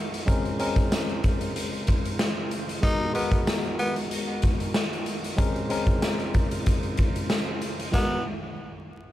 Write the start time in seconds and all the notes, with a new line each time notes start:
Already playing: D#3 G#3 B3 F#4 A#4
0.14 closed hi-hat
0.26 C#3 G#3 C4 C#4 F4 A#4 C5, kick, closed hi-hat
0.45 closed hi-hat
0.59 G#3 C4 C#4 A#4, closed hi-hat
0.76 kick, closed hi-hat
0.92 snare, tambourine
1.09 closed hi-hat
1.24 kick, closed hi-hat
1.41 closed hi-hat
1.56 closed hi-hat
1.73 closed hi-hat
1.87 kick, closed hi-hat
2.05 closed hi-hat
2.19 snare, tambourine
2.51 closed hi-hat
2.69 closed hi-hat
2.81 D#3 G#3 B3 D#4 F#4 A#4, kick, closed hi-hat
3.13 G#3 B3 F#4 A#4, closed hi-hat
3.32 kick, closed hi-hat
3.47 snare, tambourine
3.64 closed hi-hat
3.79 B3, closed hi-hat
3.96 closed hi-hat
4.11 closed hi-hat
4.42 kick, closed hi-hat
4.60 closed hi-hat
4.74 snare, tambourine
4.93 closed hi-hat
5.06 closed hi-hat
5.24 closed hi-hat
5.37 C#3 G#3 C4 C#4 F4 A#4 C5, kick, closed hi-hat
5.56 closed hi-hat
5.70 G#3 C4 C#4 A#4, closed hi-hat
5.87 kick, closed hi-hat
6.02 snare, tambourine
6.20 closed hi-hat
6.34 kick, closed hi-hat
6.51 closed hi-hat
6.66 kick, closed hi-hat
6.83 closed hi-hat
6.97 kick, closed hi-hat
7.16 closed hi-hat
7.30 snare, tambourine
7.61 closed hi-hat
7.80 closed hi-hat
7.93 D#3 G#3 B3 F#4 A#4, kick, snare, tambourine